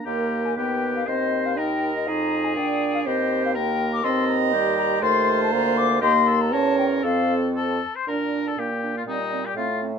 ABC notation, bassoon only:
X:1
M:2/4
L:1/8
Q:1/4=121
K:Eb
V:1 name="Bassoon" clef=bass
E,,2 E,,2 | E,,4 | F,,2 B,,2 | E,,4 |
[K:Bb] E,,4 | E,,2 D,,2 | E,,2 =E,,2 | F,,3 z |
B,,2 B,,2 | B,,2 A,,2 |]